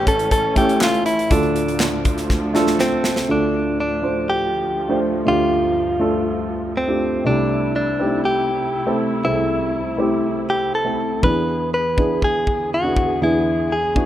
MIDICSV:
0, 0, Header, 1, 5, 480
1, 0, Start_track
1, 0, Key_signature, -1, "minor"
1, 0, Tempo, 495909
1, 1269, Time_signature, 4, 2, 24, 8
1, 13606, End_track
2, 0, Start_track
2, 0, Title_t, "Clean electric guitar"
2, 0, Program_c, 0, 27
2, 78, Note_on_c, 0, 69, 93
2, 298, Note_off_c, 0, 69, 0
2, 310, Note_on_c, 0, 69, 94
2, 553, Note_off_c, 0, 69, 0
2, 557, Note_on_c, 0, 67, 93
2, 800, Note_off_c, 0, 67, 0
2, 807, Note_on_c, 0, 65, 86
2, 1021, Note_off_c, 0, 65, 0
2, 1025, Note_on_c, 0, 64, 79
2, 1269, Note_on_c, 0, 62, 71
2, 1274, Note_off_c, 0, 64, 0
2, 2670, Note_off_c, 0, 62, 0
2, 2714, Note_on_c, 0, 60, 68
2, 3203, Note_off_c, 0, 60, 0
2, 3207, Note_on_c, 0, 62, 69
2, 3670, Note_off_c, 0, 62, 0
2, 3682, Note_on_c, 0, 62, 68
2, 4158, Note_on_c, 0, 67, 76
2, 4170, Note_off_c, 0, 62, 0
2, 4835, Note_off_c, 0, 67, 0
2, 5113, Note_on_c, 0, 65, 70
2, 6513, Note_off_c, 0, 65, 0
2, 6556, Note_on_c, 0, 60, 67
2, 7029, Note_off_c, 0, 60, 0
2, 7033, Note_on_c, 0, 62, 78
2, 7499, Note_off_c, 0, 62, 0
2, 7510, Note_on_c, 0, 62, 74
2, 7956, Note_off_c, 0, 62, 0
2, 7988, Note_on_c, 0, 67, 75
2, 8671, Note_off_c, 0, 67, 0
2, 8950, Note_on_c, 0, 64, 76
2, 10162, Note_on_c, 0, 67, 74
2, 10187, Note_off_c, 0, 64, 0
2, 10380, Note_off_c, 0, 67, 0
2, 10405, Note_on_c, 0, 69, 77
2, 10874, Note_off_c, 0, 69, 0
2, 10878, Note_on_c, 0, 71, 78
2, 11321, Note_off_c, 0, 71, 0
2, 11364, Note_on_c, 0, 71, 77
2, 11847, Note_off_c, 0, 71, 0
2, 11851, Note_on_c, 0, 68, 76
2, 12288, Note_off_c, 0, 68, 0
2, 12333, Note_on_c, 0, 66, 75
2, 12769, Note_off_c, 0, 66, 0
2, 12810, Note_on_c, 0, 64, 77
2, 13284, Note_on_c, 0, 68, 76
2, 13295, Note_off_c, 0, 64, 0
2, 13606, Note_off_c, 0, 68, 0
2, 13606, End_track
3, 0, Start_track
3, 0, Title_t, "Grand piano"
3, 0, Program_c, 1, 0
3, 0, Control_c, 1, 64, 127
3, 0, Note_on_c, 1, 33, 63
3, 0, Note_on_c, 1, 45, 59
3, 0, Note_on_c, 1, 57, 74
3, 0, Note_on_c, 1, 61, 68
3, 0, Note_on_c, 1, 64, 65
3, 0, Note_on_c, 1, 69, 82
3, 536, Note_off_c, 1, 57, 0
3, 536, Note_on_c, 1, 57, 69
3, 541, Note_off_c, 1, 61, 0
3, 541, Note_on_c, 1, 61, 63
3, 546, Note_off_c, 1, 64, 0
3, 546, Note_on_c, 1, 64, 63
3, 553, Note_off_c, 1, 69, 0
3, 553, Note_on_c, 1, 69, 76
3, 988, Note_off_c, 1, 33, 0
3, 990, Note_off_c, 1, 45, 0
3, 1168, Note_off_c, 1, 57, 0
3, 1171, Note_off_c, 1, 61, 0
3, 1174, Note_off_c, 1, 64, 0
3, 1177, Note_off_c, 1, 69, 0
3, 1259, Note_on_c, 1, 57, 67
3, 1263, Note_on_c, 1, 62, 62
3, 1266, Note_on_c, 1, 50, 61
3, 1268, Note_on_c, 1, 38, 58
3, 1269, Note_on_c, 1, 65, 62
3, 1276, Note_on_c, 1, 69, 74
3, 1282, Control_c, 1, 64, 0
3, 1438, Control_c, 1, 64, 127
3, 2099, Note_off_c, 1, 57, 0
3, 2101, Note_off_c, 1, 62, 0
3, 2104, Note_off_c, 1, 65, 0
3, 2107, Note_off_c, 1, 69, 0
3, 2457, Note_on_c, 1, 57, 84
3, 2461, Note_on_c, 1, 62, 69
3, 2466, Note_on_c, 1, 65, 70
3, 2472, Note_on_c, 1, 69, 91
3, 3089, Note_off_c, 1, 57, 0
3, 3091, Note_off_c, 1, 62, 0
3, 3094, Note_off_c, 1, 65, 0
3, 3097, Note_off_c, 1, 69, 0
3, 3149, Note_off_c, 1, 50, 0
3, 3150, Note_off_c, 1, 38, 0
3, 3176, Note_on_c, 1, 57, 57
3, 3180, Note_on_c, 1, 62, 53
3, 3181, Note_on_c, 1, 50, 50
3, 3185, Note_on_c, 1, 38, 49
3, 3186, Note_on_c, 1, 65, 53
3, 3191, Note_on_c, 1, 69, 61
3, 3202, Control_c, 1, 64, 0
3, 3382, Control_c, 1, 64, 127
3, 3809, Note_off_c, 1, 57, 0
3, 3811, Note_off_c, 1, 62, 0
3, 3814, Note_off_c, 1, 65, 0
3, 3816, Note_off_c, 1, 69, 0
3, 3893, Note_on_c, 1, 57, 56
3, 3899, Note_on_c, 1, 62, 52
3, 3906, Note_on_c, 1, 65, 51
3, 3910, Note_on_c, 1, 72, 66
3, 4632, Note_off_c, 1, 57, 0
3, 4635, Note_off_c, 1, 62, 0
3, 4638, Note_off_c, 1, 65, 0
3, 4640, Note_off_c, 1, 72, 0
3, 4731, Note_on_c, 1, 57, 69
3, 4736, Note_on_c, 1, 62, 59
3, 4740, Note_on_c, 1, 65, 60
3, 4746, Note_on_c, 1, 72, 72
3, 5053, Note_off_c, 1, 57, 0
3, 5055, Note_off_c, 1, 62, 0
3, 5058, Note_off_c, 1, 65, 0
3, 5061, Note_off_c, 1, 72, 0
3, 5067, Note_off_c, 1, 50, 0
3, 5069, Note_off_c, 1, 38, 0
3, 5084, Note_on_c, 1, 57, 61
3, 5089, Note_on_c, 1, 62, 56
3, 5091, Note_on_c, 1, 50, 51
3, 5093, Note_on_c, 1, 38, 49
3, 5093, Note_on_c, 1, 65, 54
3, 5100, Note_on_c, 1, 67, 67
3, 5723, Note_off_c, 1, 57, 0
3, 5726, Note_off_c, 1, 62, 0
3, 5728, Note_off_c, 1, 65, 0
3, 5731, Note_off_c, 1, 67, 0
3, 5802, Note_on_c, 1, 57, 73
3, 5807, Note_on_c, 1, 62, 63
3, 5812, Note_on_c, 1, 65, 61
3, 5818, Note_on_c, 1, 69, 76
3, 6546, Note_off_c, 1, 57, 0
3, 6549, Note_off_c, 1, 62, 0
3, 6552, Note_off_c, 1, 65, 0
3, 6555, Note_off_c, 1, 69, 0
3, 6653, Note_on_c, 1, 57, 57
3, 6657, Note_on_c, 1, 62, 51
3, 6664, Note_on_c, 1, 65, 53
3, 6667, Note_on_c, 1, 67, 66
3, 6975, Note_off_c, 1, 57, 0
3, 6977, Note_off_c, 1, 62, 0
3, 6980, Note_off_c, 1, 65, 0
3, 6982, Note_off_c, 1, 50, 0
3, 6982, Note_off_c, 1, 67, 0
3, 6983, Note_off_c, 1, 38, 0
3, 7011, Note_on_c, 1, 57, 62
3, 7018, Note_on_c, 1, 48, 53
3, 7019, Note_on_c, 1, 60, 55
3, 7022, Note_on_c, 1, 36, 53
3, 7025, Note_on_c, 1, 64, 56
3, 7029, Note_on_c, 1, 67, 65
3, 7042, Control_c, 1, 64, 0
3, 7181, Control_c, 1, 64, 127
3, 7647, Note_off_c, 1, 57, 0
3, 7651, Note_off_c, 1, 60, 0
3, 7654, Note_off_c, 1, 64, 0
3, 7656, Note_off_c, 1, 67, 0
3, 7737, Note_on_c, 1, 57, 59
3, 7741, Note_on_c, 1, 60, 54
3, 7746, Note_on_c, 1, 63, 45
3, 7754, Note_on_c, 1, 67, 67
3, 7806, Note_off_c, 1, 63, 0
3, 7807, Note_on_c, 1, 64, 56
3, 8474, Note_off_c, 1, 57, 0
3, 8476, Note_off_c, 1, 60, 0
3, 8483, Note_off_c, 1, 67, 0
3, 8509, Note_off_c, 1, 64, 0
3, 8579, Note_on_c, 1, 57, 67
3, 8583, Note_on_c, 1, 60, 61
3, 8589, Note_on_c, 1, 64, 65
3, 8594, Note_on_c, 1, 69, 73
3, 8898, Note_off_c, 1, 57, 0
3, 8900, Note_off_c, 1, 60, 0
3, 8903, Note_off_c, 1, 64, 0
3, 8905, Note_off_c, 1, 69, 0
3, 8906, Note_off_c, 1, 48, 0
3, 8907, Note_off_c, 1, 36, 0
3, 8939, Note_on_c, 1, 57, 55
3, 8947, Note_on_c, 1, 60, 57
3, 8951, Note_on_c, 1, 36, 51
3, 8951, Note_on_c, 1, 48, 52
3, 8952, Note_on_c, 1, 64, 52
3, 8958, Note_on_c, 1, 68, 55
3, 9012, Note_off_c, 1, 68, 0
3, 9015, Note_on_c, 1, 69, 62
3, 9571, Note_off_c, 1, 57, 0
3, 9575, Note_off_c, 1, 60, 0
3, 9578, Note_off_c, 1, 64, 0
3, 9609, Note_off_c, 1, 69, 0
3, 9659, Note_on_c, 1, 57, 66
3, 9664, Note_on_c, 1, 60, 64
3, 9670, Note_on_c, 1, 64, 65
3, 9675, Note_on_c, 1, 67, 80
3, 10396, Note_off_c, 1, 57, 0
3, 10398, Note_off_c, 1, 60, 0
3, 10401, Note_off_c, 1, 64, 0
3, 10404, Note_off_c, 1, 67, 0
3, 10499, Note_on_c, 1, 57, 58
3, 10501, Note_on_c, 1, 60, 51
3, 10506, Note_on_c, 1, 64, 49
3, 10512, Note_on_c, 1, 69, 61
3, 10818, Note_off_c, 1, 57, 0
3, 10819, Note_off_c, 1, 60, 0
3, 10822, Note_off_c, 1, 64, 0
3, 10825, Note_off_c, 1, 69, 0
3, 10832, Note_off_c, 1, 36, 0
3, 10833, Note_off_c, 1, 48, 0
3, 10857, Note_on_c, 1, 59, 59
3, 10865, Note_on_c, 1, 52, 51
3, 10866, Note_on_c, 1, 62, 54
3, 10868, Note_on_c, 1, 40, 52
3, 10872, Note_on_c, 1, 64, 55
3, 10876, Note_on_c, 1, 68, 62
3, 10884, Control_c, 1, 64, 0
3, 11078, Control_c, 1, 64, 127
3, 11490, Note_off_c, 1, 59, 0
3, 11495, Note_off_c, 1, 62, 0
3, 11498, Note_off_c, 1, 64, 0
3, 11500, Note_off_c, 1, 68, 0
3, 11586, Note_on_c, 1, 59, 57
3, 11588, Note_on_c, 1, 62, 54
3, 11596, Note_on_c, 1, 64, 54
3, 11600, Note_on_c, 1, 68, 65
3, 12319, Note_off_c, 1, 59, 0
3, 12320, Note_off_c, 1, 62, 0
3, 12325, Note_off_c, 1, 64, 0
3, 12326, Note_off_c, 1, 68, 0
3, 12423, Note_on_c, 1, 59, 57
3, 12425, Note_on_c, 1, 62, 53
3, 12435, Note_on_c, 1, 64, 52
3, 12439, Note_on_c, 1, 66, 60
3, 12740, Note_off_c, 1, 59, 0
3, 12741, Note_off_c, 1, 62, 0
3, 12746, Note_off_c, 1, 64, 0
3, 12748, Note_off_c, 1, 66, 0
3, 12749, Note_off_c, 1, 52, 0
3, 12751, Note_off_c, 1, 40, 0
3, 12784, Note_on_c, 1, 59, 58
3, 12788, Note_on_c, 1, 62, 54
3, 12790, Note_on_c, 1, 40, 51
3, 12792, Note_on_c, 1, 52, 52
3, 12793, Note_on_c, 1, 64, 56
3, 12801, Note_on_c, 1, 68, 71
3, 13414, Note_off_c, 1, 59, 0
3, 13416, Note_off_c, 1, 62, 0
3, 13419, Note_off_c, 1, 64, 0
3, 13423, Note_off_c, 1, 68, 0
3, 13499, Note_on_c, 1, 59, 63
3, 13504, Note_on_c, 1, 62, 58
3, 13513, Note_on_c, 1, 64, 54
3, 13514, Note_on_c, 1, 66, 65
3, 13606, Note_off_c, 1, 40, 0
3, 13606, Note_off_c, 1, 52, 0
3, 13606, Note_off_c, 1, 59, 0
3, 13606, Note_off_c, 1, 62, 0
3, 13606, Note_off_c, 1, 64, 0
3, 13606, Note_off_c, 1, 66, 0
3, 13606, End_track
4, 0, Start_track
4, 0, Title_t, "String section"
4, 0, Program_c, 2, 48
4, 0, Note_on_c, 2, 45, 73
4, 0, Note_on_c, 2, 52, 67
4, 0, Note_on_c, 2, 61, 76
4, 1246, Note_off_c, 2, 45, 0
4, 1248, Note_off_c, 2, 61, 0
4, 1249, Note_off_c, 2, 52, 0
4, 1274, Note_on_c, 2, 38, 74
4, 1275, Note_on_c, 2, 53, 77
4, 1280, Note_on_c, 2, 45, 67
4, 3172, Note_off_c, 2, 38, 0
4, 3173, Note_off_c, 2, 53, 0
4, 3175, Note_off_c, 2, 45, 0
4, 3190, Note_on_c, 2, 38, 63
4, 3194, Note_on_c, 2, 45, 56
4, 3194, Note_on_c, 2, 53, 70
4, 5092, Note_off_c, 2, 45, 0
4, 5104, Note_on_c, 2, 43, 57
4, 6992, Note_off_c, 2, 38, 0
4, 6994, Note_off_c, 2, 53, 0
4, 7008, Note_off_c, 2, 43, 0
4, 7017, Note_on_c, 2, 64, 71
4, 7019, Note_on_c, 2, 57, 59
4, 7022, Note_on_c, 2, 48, 63
4, 10826, Note_off_c, 2, 64, 0
4, 10827, Note_off_c, 2, 57, 0
4, 10828, Note_off_c, 2, 48, 0
4, 10877, Note_on_c, 2, 50, 57
4, 10877, Note_on_c, 2, 68, 70
4, 10879, Note_on_c, 2, 40, 63
4, 13606, Note_off_c, 2, 40, 0
4, 13606, Note_off_c, 2, 50, 0
4, 13606, Note_off_c, 2, 68, 0
4, 13606, End_track
5, 0, Start_track
5, 0, Title_t, "Drums"
5, 67, Note_on_c, 9, 36, 83
5, 67, Note_on_c, 9, 42, 69
5, 164, Note_off_c, 9, 36, 0
5, 164, Note_off_c, 9, 42, 0
5, 187, Note_on_c, 9, 42, 49
5, 284, Note_off_c, 9, 42, 0
5, 302, Note_on_c, 9, 42, 79
5, 304, Note_on_c, 9, 36, 74
5, 399, Note_off_c, 9, 42, 0
5, 401, Note_off_c, 9, 36, 0
5, 544, Note_on_c, 9, 42, 71
5, 545, Note_on_c, 9, 36, 75
5, 640, Note_off_c, 9, 42, 0
5, 642, Note_off_c, 9, 36, 0
5, 670, Note_on_c, 9, 42, 47
5, 767, Note_off_c, 9, 42, 0
5, 785, Note_on_c, 9, 39, 86
5, 788, Note_on_c, 9, 38, 99
5, 882, Note_off_c, 9, 39, 0
5, 885, Note_off_c, 9, 38, 0
5, 910, Note_on_c, 9, 42, 34
5, 1006, Note_off_c, 9, 42, 0
5, 1024, Note_on_c, 9, 42, 71
5, 1121, Note_off_c, 9, 42, 0
5, 1153, Note_on_c, 9, 42, 53
5, 1250, Note_off_c, 9, 42, 0
5, 1264, Note_on_c, 9, 42, 70
5, 1266, Note_on_c, 9, 36, 90
5, 1361, Note_off_c, 9, 42, 0
5, 1363, Note_off_c, 9, 36, 0
5, 1382, Note_on_c, 9, 42, 29
5, 1479, Note_off_c, 9, 42, 0
5, 1507, Note_on_c, 9, 42, 65
5, 1603, Note_off_c, 9, 42, 0
5, 1630, Note_on_c, 9, 42, 49
5, 1727, Note_off_c, 9, 42, 0
5, 1740, Note_on_c, 9, 39, 83
5, 1743, Note_on_c, 9, 38, 115
5, 1837, Note_off_c, 9, 39, 0
5, 1840, Note_off_c, 9, 38, 0
5, 1984, Note_on_c, 9, 42, 70
5, 1987, Note_on_c, 9, 36, 80
5, 2081, Note_off_c, 9, 42, 0
5, 2084, Note_off_c, 9, 36, 0
5, 2105, Note_on_c, 9, 38, 29
5, 2107, Note_on_c, 9, 42, 46
5, 2202, Note_off_c, 9, 38, 0
5, 2204, Note_off_c, 9, 42, 0
5, 2226, Note_on_c, 9, 36, 76
5, 2226, Note_on_c, 9, 38, 52
5, 2322, Note_off_c, 9, 38, 0
5, 2323, Note_off_c, 9, 36, 0
5, 2466, Note_on_c, 9, 38, 64
5, 2562, Note_off_c, 9, 38, 0
5, 2583, Note_on_c, 9, 38, 62
5, 2680, Note_off_c, 9, 38, 0
5, 2703, Note_on_c, 9, 38, 75
5, 2800, Note_off_c, 9, 38, 0
5, 2943, Note_on_c, 9, 38, 96
5, 3039, Note_off_c, 9, 38, 0
5, 3061, Note_on_c, 9, 38, 85
5, 3158, Note_off_c, 9, 38, 0
5, 10871, Note_on_c, 9, 36, 84
5, 10968, Note_off_c, 9, 36, 0
5, 11593, Note_on_c, 9, 36, 73
5, 11690, Note_off_c, 9, 36, 0
5, 11831, Note_on_c, 9, 36, 64
5, 11928, Note_off_c, 9, 36, 0
5, 12071, Note_on_c, 9, 36, 63
5, 12167, Note_off_c, 9, 36, 0
5, 12549, Note_on_c, 9, 36, 75
5, 12645, Note_off_c, 9, 36, 0
5, 13512, Note_on_c, 9, 36, 74
5, 13606, Note_off_c, 9, 36, 0
5, 13606, End_track
0, 0, End_of_file